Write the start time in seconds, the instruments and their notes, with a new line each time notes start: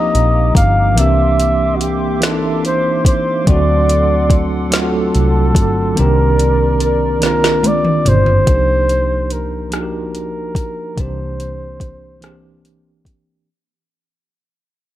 Already playing: fingered electric bass C2, tine electric piano F3 A#3 C4 D4 D#4 G4, analog synth pad A#3 F5 A#5 D6, flugelhorn D#5
0.15 fingered electric bass A#1, closed hi-hat
0.55 fingered electric bass G1, flugelhorn F5, kick, closed hi-hat
0.95 fingered electric bass C2, tine electric piano E3 A#3 C4, analog synth pad E5 C6, closed hi-hat
0.99 tine electric piano D4 G4, flugelhorn E5
1.40 closed hi-hat
1.76 flugelhorn F#4
1.81 flugelhorn G4, closed hi-hat
2.20 tine electric piano E3 A#3 C4, snare, closed hi-hat
2.24 tine electric piano D4 D#4, flugelhorn A4
2.32 tine electric piano E4
2.65 flugelhorn C5, closed hi-hat
3.05 fingered electric bass A1, flugelhorn C5, kick, closed hi-hat
3.45 fingered electric bass D2, tine electric piano F#3 A3 C4, analog synth pad A4 F#5, kick, closed hi-hat
3.49 tine electric piano D4 F#4, flugelhorn D5
3.89 closed hi-hat
4.30 kick, closed hi-hat
4.70 tine electric piano F#3 A3 C4, snare, closed hi-hat
4.74 tine electric piano D4 F4, flugelhorn A4
4.82 tine electric piano F#4
5.15 fingered electric bass C2, closed hi-hat
5.55 fingered electric bass G1, kick, closed hi-hat
5.95 tine electric piano D#3 A#3 C4, analog synth pad A#4 D5, closed hi-hat
5.99 fingered electric bass C2, tine electric piano D4 G4, flugelhorn A#4
6.39 closed hi-hat
6.80 flugelhorn A#4, closed hi-hat
7.20 tine electric piano D#3 A#3 C4, snare, closed hi-hat
7.24 tine electric piano D4 F4, flugelhorn A#4
7.44 snare
7.63 flugelhorn D5, closed hi-hat, high tom
7.85 mid tom
8.05 fingered electric bass G1, flugelhorn C5, closed hi-hat, mid tom
8.26 floor tom
8.45 fingered electric bass C2, tine electric piano F3 A#3 D4 D#4, kick, closed hi-hat
8.51 tine electric piano G4
8.89 closed hi-hat
9.30 flugelhorn A#4, closed hi-hat
9.70 tine electric piano F3 A#3 D4, cross-stick, closed hi-hat
9.74 tine electric piano D#4 F#4, flugelhorn A#4
9.82 tine electric piano G4
10.15 closed hi-hat
10.55 fingered electric bass G1, kick, closed hi-hat
10.95 fingered electric bass C2, tine electric piano E3 A#3 C4, kick, closed hi-hat
11.00 tine electric piano D4 G4, flugelhorn C5
11.40 closed hi-hat
11.80 kick, closed hi-hat
12.21 tine electric piano E3 A#3 C4, cross-stick, closed hi-hat
12.25 tine electric piano D4 G4
12.65 closed hi-hat
13.05 kick, closed hi-hat